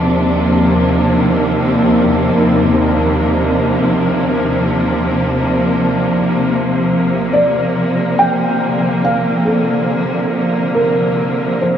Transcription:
Already playing: D#2 C3 F3 D4
0.41 A#3
7.33 D5
8.19 G5
8.51 D3
9.04 F5
9.45 A4
10.74 A#4
11.61 C5

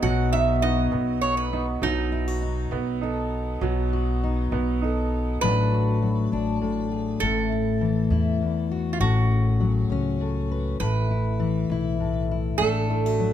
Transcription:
Already playing: F#3 B3 D#4 F#4
0.02 B1 B2 F#3 F#4 F#5
0.32 D#4 E5
0.62 B3 D#4 F#4 D#5
0.92 B1 B3, muted steel-string acoustic guitar stroke
1.21 C#5
1.37 B4
1.53 B3 D#4
1.82 B1 B2 F#3 B3 D#4
2.12 E4
2.28 F#4
2.42 D#4
2.71 B1 B3, muted steel-string acoustic guitar stroke
3.01 D#4 A4
3.61 B1 B2 F#3 B3
3.93 F#4
4.24 D#4
4.52 B1 B3, muted steel-string acoustic guitar stroke
4.82 D#4 A4
5.41 A1 A2 F#3 A3 D4 F#4 B4
5.74 F#4
6.02 F#3
6.32 A1 D4
6.62 A2
6.92 G#4
7.20 A1 A2 E4 A4
7.52 E4
7.81 E3
8.10 E2 E4
8.41 E2
8.71 F#4
8.93 F4
9.00 A1 A2 C#4 F#4
9.32 G#4
9.60 F#3
9.90 C#2 C#4
10.21 A2
10.51 B4
10.80 A1 A2 E4 B4
11.11 E4
11.40 E3
11.70 B1 E4
12.00 A2
12.31 E4
12.58 A1 A2 A3 D4 A4
12.90 E4
13.06 F#4
13.20 F#3

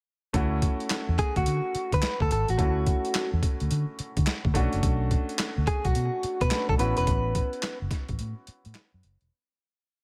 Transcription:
0.33 D2 A3 C#4 E4 F#4, kick, closed hi-hat
0.62 kick, closed hi-hat
0.80 closed hi-hat
0.90 snare, clap, closed hi-hat
1.09 E2
1.18 G#4, kick, closed hi-hat
1.36 D2 F#4, kick, closed hi-hat
1.46 D3, closed hi-hat
1.75 muted fingered electric bass stroke, closed hi-hat
1.92 D3 B4, kick, closed hi-hat
2.02 snare, clap, closed hi-hat
2.20 D2 A4, kick
2.31 G#1 A4, closed hi-hat
2.48 A1 F#4, closed hi-hat
2.57 D2 A3 C#4 E4 F#4, kick, closed hi-hat
2.86 kick, closed hi-hat
3.05 closed hi-hat
3.14 snare, clap, closed hi-hat
3.33 E2
3.43 kick, closed hi-hat
3.60 D2, closed hi-hat
3.71 D3, closed hi-hat
3.99 muted fingered electric bass stroke, closed hi-hat
4.17 D3, kick, closed hi-hat
4.26 snare, clap, closed hi-hat
4.45 D2, kick
4.54 B1 A3 C#4 D4 F#4, kick, closed hi-hat
4.73 F#1, closed hi-hat
4.83 B1, kick, closed hi-hat
5.11 kick, closed hi-hat
5.29 closed hi-hat
5.38 snare, clap, closed hi-hat
5.58 D2
5.67 G#4, kick, closed hi-hat
5.85 B1 F#4, kick, closed hi-hat
5.95 B2, closed hi-hat
6.23 muted fingered electric bass stroke, closed hi-hat
6.41 B2 B4, kick, closed hi-hat
6.51 A3 C#4 D4 F#4, snare, clap, closed hi-hat
6.69 B1 A4, kick
6.78 A1 B3 C#4 E4 F#4 B4, closed hi-hat
6.97 E1 B4, closed hi-hat
7.07 A1, kick, closed hi-hat
7.35 kick, closed hi-hat
7.53 closed hi-hat
7.62 snare, clap, closed hi-hat
7.82 F#1
7.91 kick, snare, closed hi-hat
8.09 A1, kick, closed hi-hat
8.19 A2, closed hi-hat
8.47 muted fingered electric bass stroke, closed hi-hat
8.65 A2, closed hi-hat
8.74 snare, clap, closed hi-hat
8.94 F#2
9.03 F#1, closed hi-hat
9.21 E1, closed hi-hat

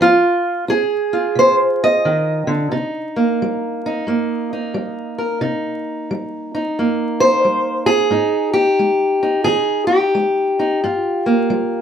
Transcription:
0.01 F3 F4
0.68 F4 G#4
1.13 F4
1.35 C3 C5
1.84 D#5
2.05 D#3
2.47 D3
2.72 C3 D#4
3.16 A#3
3.42 G3
3.86 D#4
4.07 G2 A#3
4.53 D#4
4.74 G3
5.18 A#4
5.41 C3 D#4
6.11 G3
6.55 D#4
6.79 G2 A#3
7.20 C5
7.45 G3
7.86 G#4
8.11 G#2 D#4
8.54 G4
8.79 G#3
9.23 D#4
9.44 D#3 G#4
9.87 G4
10.15 G#3
10.59 D#4
10.84 G2 F4
11.26 A#3
11.50 G3

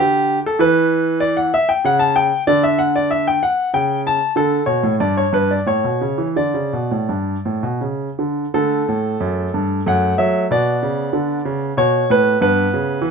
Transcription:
Already playing: D3 G4
0.46 A4
0.59 E3 B4
1.20 D5
1.37 F#5
1.54 E5
1.69 G5
1.84 C#3 F#5
1.99 A5
2.16 G5
2.47 D3 D5
2.63 E5
2.79 F#5
2.96 D5
3.11 E5
3.28 G5
3.43 F#5
3.74 C#3 G5
4.07 A5
4.36 D3 A4
4.66 B2 C#5
4.83 A2
5.00 G2 D5
5.17 C#5
5.33 G2 B4
5.51 D5
5.66 A2 C#5
5.84 B2
6.01 C#3
6.18 E3
6.36 D3 D5
6.54 C#3
6.73 B2
6.91 A2
7.09 G2
7.45 A2
7.63 B2
7.81 C#3
8.19 D3
8.54 D3 A3 A4
8.88 A2
9.20 F#2
9.54 G2
9.86 F#2 A3 F#5
10.18 F#3 E5
10.51 B2 B3 D5
10.83 C#3
11.13 D3
11.45 C#3
11.77 B2 C#5
12.10 A2 B4
12.41 G2 B3 B4
12.74 C#3
13.02 E3

